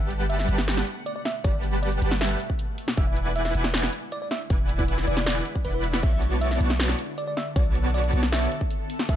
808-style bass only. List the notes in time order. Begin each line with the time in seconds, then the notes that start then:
Already playing: G1
0.49 G1
1.45 G1
2.02 G1
2.98 E1
3.55 E1
4.50 E1
5.08 E1
5.65 E1
6.03 B1
6.61 B1
7.56 B1
8.13 B1
9.09 D2